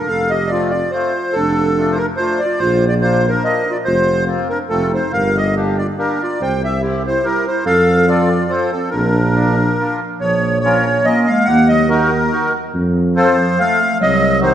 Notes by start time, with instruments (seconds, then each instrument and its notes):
0.06 tuba F1, clarinet A4, accordion F5
0.30 clarinet G4, accordion D#5
0.47 clarinet F4, accordion D5
0.51 accordion A3 C4 F4
0.70 clarinet F4, accordion D5
0.91 accordion A3 C4 F4 C5, clarinet F4
1.33 tuba F1, clarinet D4, accordion A4
1.77 accordion A3 D4 F4
1.92 clarinet D#4, accordion C5
1.97 clarinet D4, accordion A#4
2.17 accordion A3 D4 F4 C5, clarinet F4
2.39 accordion D5
2.45 clarinet F4
2.58 tuba A#1, clarinet F4, accordion C5
2.87 clarinet F4, accordion D5
3.01 accordion A#3 D4 F4 C5, clarinet F4
3.28 clarinet D4 D#4, accordion A#4 C5
3.43 accordion A#3 D4 F4 D#5, clarinet A#4
3.70 clarinet F4, accordion D5
3.85 tuba F1, clarinet F4, accordion C5
4.25 accordion A#3 C4 F4
4.49 clarinet D4, accordion A#4
4.69 tuba F1, accordion A3 C4 F4 A4, clarinet C4
4.90 clarinet D#4, accordion C5
5.13 tuba G1, clarinet A#4, accordion F5
5.36 clarinet G4, accordion D#5
5.56 accordion A#3 D4 G4
5.78 clarinet F4, accordion D5
5.98 accordion A#3 D4 G4 A#4, clarinet D4
6.23 clarinet F4, accordion D5
6.41 tuba C2, clarinet C5, accordion G5
6.63 clarinet G4, accordion E5
6.82 accordion C4 E4 G4
7.06 clarinet E4, accordion C5
7.22 accordion C4 E4 G4 A#4, clarinet E4
7.48 clarinet E4, accordion C5
7.66 tuba F2, clarinet A4, accordion F5
8.07 accordion C4 F4 A4 D5, clarinet F4
8.48 accordion C4 F4 A4 C5, clarinet F4
8.71 clarinet C4, accordion A4
8.90 clarinet D4, accordion A#4
8.94 tuba A#1
9.34 accordion D4 F4 A#4
9.80 accordion D4 F4 A#4
10.20 tuba A#1, clarinet F3, accordion C#5
10.60 clarinet F3, accordion C#5
10.64 accordion C#4 F4 A#4
11.04 clarinet A#3, accordion C#4 F4 A#4 D#5
11.27 clarinet G#3, accordion F5
11.45 clarinet A#3, accordion F#5
11.49 tuba D#2
11.68 clarinet F#3, accordion D#5
11.88 clarinet D#3, accordion D#4 F#4 A#4
12.31 accordion D#4 F#4 A#4
12.75 tuba F2
13.16 clarinet F3, accordion C4 F4 A4 C5
13.58 clarinet A3, accordion C4 F4 A4 F5
14.00 tuba C2, clarinet F#3, accordion D#5
14.41 clarinet D#3, accordion C4 D#4 F#4 C5